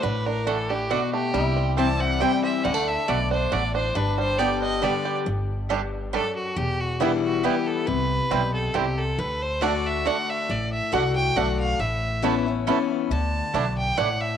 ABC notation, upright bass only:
X:1
M:3/4
L:1/8
Q:1/4=138
K:G
V:1 name="Upright bass" clef=bass
A,,,6 | C,,6 | D,,2 B,,,2 A,,,2 | G,,,6 |
G,,,6 | E,,,6 | C,,2 B,,,2 C,,2 | D,,6 |
A,,,2 C,,2 B,,,2 | A,,,6 | D,,2 B,,,2 A,,,2 |]